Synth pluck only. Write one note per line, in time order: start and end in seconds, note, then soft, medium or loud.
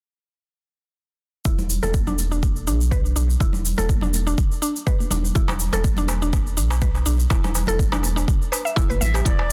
1.45 1.58 E4 medium
1.83 1.93 A4 loud
2.07 2.17 D4 medium
2.31 2.42 D4 medium
2.67 2.79 D4 medium
2.91 2.99 B4 medium
3.16 3.23 D4 medium
3.40 3.53 E4 medium
3.78 3.88 A4 loud
4.02 4.12 D4 medium
4.27 4.37 D4 medium
4.62 4.74 D4 medium
4.87 4.94 B4 medium
5.11 5.18 D4 medium
5.35 5.48 E4 medium
5.73 5.84 A4 loud
5.98 6.08 D4 medium
6.22 6.32 D4 medium
6.57 6.69 D4 medium
6.82 6.89 B4 medium
7.06 7.13 D4 medium
7.30 7.43 E4 medium
7.68 7.79 A4 loud
7.92 8.02 D4 medium
8.16 8.27 D4 medium
8.52 8.64 B4 medium
8.65 8.75 E5 medium
8.76 8.89 E4 loud
8.90 9.00 B4 medium
9.01 9.14 E5 medium
9.14 9.25 G4 medium
9.25 9.38 E4 medium